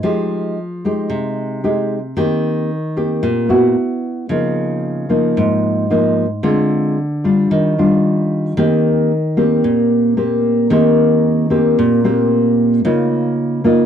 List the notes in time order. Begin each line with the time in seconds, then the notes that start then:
0.03 F3 G#3 D#4 G4
0.85 G#3 D#4 G4
1.10 C3
1.64 G#3 D#4 G4
2.17 D#3 A#3 C4 G4
2.96 A#3 C4 G4
3.23 A#2
3.49 B3 E4 F#4
4.29 C#3 F3 A#3 D#4
5.09 F3 A#3 D#4
5.37 G#2
5.90 F3 A#3 D#4
6.43 D3 G#3 C4 F4
7.24 G3 D4 F4
7.51 D#3
7.78 G3 D4 F4
8.57 D#3 A#3 C4 G4
9.37 A#3 C4 G4
9.64 A#2
10.17 A#3 C4 G4
10.70 D#3 A#3 C4 G4
11.50 A#3 C4 G4
11.79 A#2
12.04 A#3 C4 G4
12.85 C#3 A#3 D#4 F4
13.64 A#3 D#4 F4